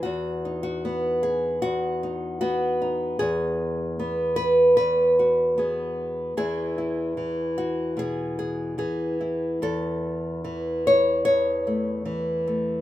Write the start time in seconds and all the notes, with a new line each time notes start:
0.03 E2 F#4
0.45 D#4
0.63 F#4
0.85 B3
1.23 G#4
1.62 E2 F#4
2.03 D#4
2.41 B3 F#4
2.82 D#4
3.19 E2 G#4
3.99 B3
4.36 B4
4.77 E2 B4
5.19 F#4
5.58 B3 G#4
6.37 E2 E3 E4 G#4
6.78 E4
7.17 E3
7.58 F#4
7.97 B2 G#4
8.39 G#4
8.78 E3 G#4
9.21 E4
9.62 E2 A4
10.44 E3
10.87 C#5
11.25 E2 C#5
11.67 A3
12.05 E3
12.47 A3